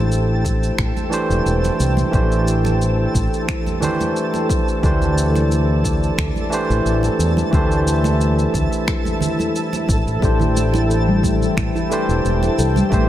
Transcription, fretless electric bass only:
Already playing: A1
0.78 A1
1.30 E1
1.46 E1
1.80 C2
2.13 A1
3.15 A1
4.83 D2
6.18 D2
6.70 A1
6.85 A1
7.19 E2
7.53 D2
8.54 D2
9.89 A1
10.07 A1
10.22 A1
11.57 A1
12.08 E1
12.25 E1
12.58 C2
12.92 A1

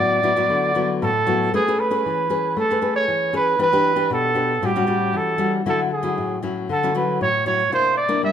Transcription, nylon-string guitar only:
Already playing: F#3 B3 E4
0.00 A2
0.23 F#3 B3 E4
0.36 F#3 B3 E4
0.50 D3
0.75 F#3 B3 E4
1.02 A2
1.27 F#3 B3 E4
1.54 A3 C#4 G#4 B4
1.68 C#4 G#4 B4
1.91 C#4 G#4 B4
2.06 E3
2.30 C#4 G#4 B4
2.56 A3
2.71 C#4 G#4 B4
2.81 C#4 G#4 B4
3.08 E3
3.33 C#4 G#4 B4
3.59 E3 D4 G4 B4
3.72 D4 G4 B4
3.96 D4 G4 B4
4.10 B2
4.35 D4 G4 B4
4.62 A2 G3 C#4 F#4
4.76 G3 C#4 F#4
4.87 G3 C#4 F#4
5.14 E3
5.38 G3 C#4 F#4
5.66 D3 F#3 C#4 E4
6.03 F#3 C#4 E4
6.18 A2
6.43 F#3 C#4 E4
6.69 D3
6.83 F#3 C#4 E4
6.95 F#3 C#4 E4
7.21 A2
7.46 F#3 C#4 E4
7.72 C3 A#3 D4 E4
8.09 A#3 D4 E4
8.23 G3

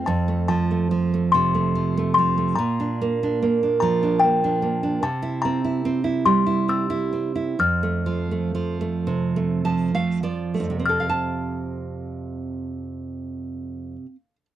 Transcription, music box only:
0.06 A5
0.48 A5
1.32 C6
2.14 C6
2.55 A#5
3.80 A#5
4.19 G5
5.03 A5
5.42 A#5
6.26 C6
6.69 E6
7.60 F6
10.86 F6

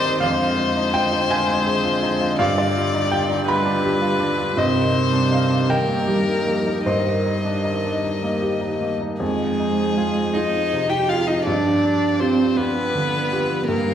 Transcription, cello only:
Already playing: D#3
0.22 D3
4.58 C3
5.70 D#3
6.09 G3
6.47 F3
6.86 D#3
9.20 G#3
10.34 D#4
10.90 G4
11.08 F4
11.28 D#4
11.45 D4
12.20 C4
12.57 B3
13.68 A#3

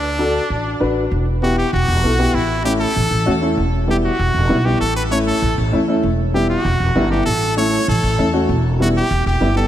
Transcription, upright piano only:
0.19 D4 F#4 A4
0.80 D4 F#4 B4
1.42 B3 E4 G4
2.03 B3 E4 A4
2.19 B3 E4 G4
2.64 A3 C#4 E4
3.26 A3 C#4 F#4
3.41 A3 C#4 E4
3.87 G3 B3 E4
4.49 G3 B3 E4
4.65 G3 B3 E4
5.11 A3 C#4 E4
5.72 A3 C#4 E4
5.88 A3 C#4 E4
6.34 G3 B3 E4
6.95 G3 B3 E4
7.11 G3 B3 E4
7.57 A3 C#4 E4
8.18 A3 C#4 E4
8.33 A3 C#4 F#4
8.80 G3 B3 E4
9.41 G3 B3 E4
9.56 G3 B3 G4

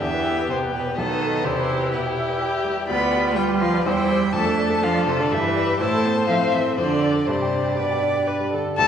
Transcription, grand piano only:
0.02 E2
0.14 B4
0.26 G4
0.38 B4
0.50 G4
0.62 B4
0.74 G4
0.86 B4
0.98 B1
1.11 B4
1.22 A4
1.35 B4
1.47 E2
1.59 B4
1.71 G4
1.83 B4
1.95 E4
2.06 G4
2.19 E4
2.30 B4
2.41 G4
2.54 E4
2.65 G3
2.77 E4
2.89 D2
3.00 D5
3.12 G4
3.24 D5
3.36 F4
3.49 G4
3.62 F4
3.74 D5
3.86 E2
3.97 C5
4.10 G4
4.22 C5
4.34 F2
4.46 A4
4.58 D5
4.70 A4
4.82 D4
4.94 D5
5.07 D4
5.19 A4
5.32 G2
5.44 B4
5.56 D5
5.67 B4
5.80 A2
5.93 A4
6.05 C5
6.17 A4
6.29 E4
6.41 C5
6.53 E4
6.66 A4
6.78 F2
6.91 A4
7.03 C5
7.15 A4
7.28 G2
7.42 G4
7.54 D4
7.66 G4
7.78 D4
7.91 G4
8.03 D4
8.16 G4
8.28 D4
8.40 G3
8.53 D3
8.66 D4
8.79 C2

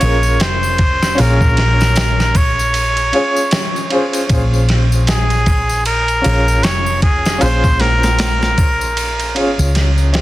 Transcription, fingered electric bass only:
0.02 A#1
0.41 F1
1.19 A#1
4.30 A#1
6.26 A#1
6.65 F1
7.42 A#1
9.36 G#1
9.59 C#2

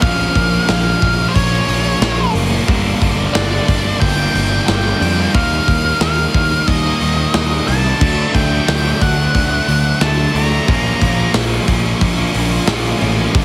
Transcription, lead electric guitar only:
0.01 F5
0.70 F5
1.28 C5
1.36 C#5
3.34 D5
4.00 G5
4.67 G5
5.35 F5
6.02 F5
6.67 D#5
7.68 A5
8.35 G5
9.02 F#5
10.02 A5
10.36 A#5

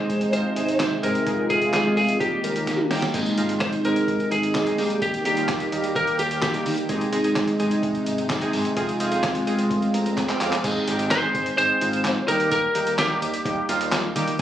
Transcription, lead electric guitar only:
Already playing: C5
0.33 C5
0.80 C5
1.03 A#4
1.50 G#4
1.73 G#4
1.97 G#4
2.20 G4
3.61 C5
3.85 A#4
4.32 G#4
5.02 G4
5.26 G4
5.96 A#4
6.19 G4
6.43 G4
11.11 C5
11.58 C5
12.28 A#4
12.52 A#4
12.99 G4

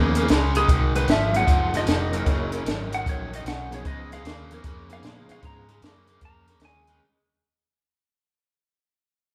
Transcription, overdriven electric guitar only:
Already playing: C#3 A#3
0.16 C#3 A#3
0.30 C#3 G#3
0.56 C#3 G#3
0.69 G#2 D#3
0.95 G#2 D#3
1.09 G#2 F3
1.36 G#2 F3
1.48 G#2 F3
1.74 G#2 F3
1.88 G#2 D#3
2.12 G#2 D#3
2.25 F#2 C#3
2.51 F#2 C#3
2.65 F#2 D#3
2.91 F#2 D#3
3.05 F#2 D#3
3.33 F#2 D#3
3.46 F#2 C#3
3.71 F#2 C#3
3.86 C#3 G#3
4.12 C#3 G#3
4.26 C#3 A#3
4.51 C#3 A#3
4.65 C#3 A#3
4.90 C#3 A#3
5.04 C#3 G#3
5.29 C#3 G#3
5.42 C#3 G#3
5.68 C#3 G#3
5.83 C#3 A#3
6.08 C#3 A#3
6.22 C#3 A#3
6.47 C#3 A#3
6.61 C#3 G#3
6.88 C#3 G#3

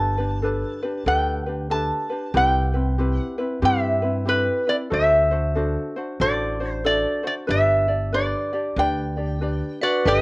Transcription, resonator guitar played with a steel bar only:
Already playing: A5
1.08 G5
1.71 A5
2.37 G5
3.18 F#5
3.65 E5
4.29 B4
4.69 D5
4.94 E5
6.21 D5
6.71 C5
6.86 D5
7.27 D5
7.50 E5
8.14 D5
8.79 G5
9.83 F#4 D5
10.07 G4 E5

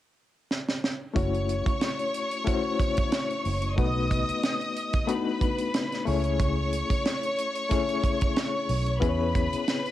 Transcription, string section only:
1.16 C#5 C#6
3.78 D#5 D#6
5.09 B4 B5
6.07 C#5 C#6
9.02 B4 B5

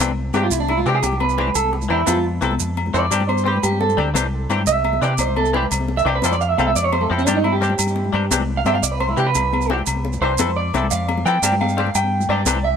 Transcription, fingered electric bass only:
0.00 C2
0.34 G2
0.51 C2
0.86 C3
1.03 C2
1.55 C2
1.90 E2
2.08 F2
2.42 C2
2.60 F2
2.94 F2
3.11 G2
3.63 G2
3.97 D2
4.14 C2
4.49 G2
4.67 C2
5.01 C3
5.18 C2
5.71 C2
6.05 C2
6.23 F2
6.58 C2
6.75 F2
7.10 F2
7.27 G2
7.79 G2
8.13 G2
8.31 C2
8.65 G2
8.82 C2
9.17 C3
9.35 C2
9.87 C2
10.21 C2
10.39 F2
10.74 C2
10.91 F2
11.26 F3
11.42 G2
11.95 G2
12.29 G2
12.46 C2

